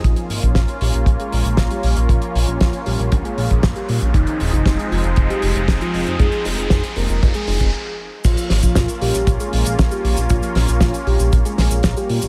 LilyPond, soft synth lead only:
\new Staff \with { instrumentName = "Soft synth lead" } { \time 4/4 \key bes \dorian \tempo 4 = 117 f'8 r16 f'8 r16 g'8 r16 aes'8. r16 g'8 r16 | f'8 r16 f'8 r16 g'8 r16 aes'8. r16 g'8 r16 | ees'8 r16 ees'8 r16 f'8 r16 g'8. r16 f'8 r16 | aes'8 r16 aes'8 r16 bes'8 r16 aes'8. r4 |
f'8 r16 f'8 r16 g'8 r16 aes'8. r16 g'8 r16 | f'8 r16 f'8 r16 g'8 r16 aes'8. r16 g'8 r16 | }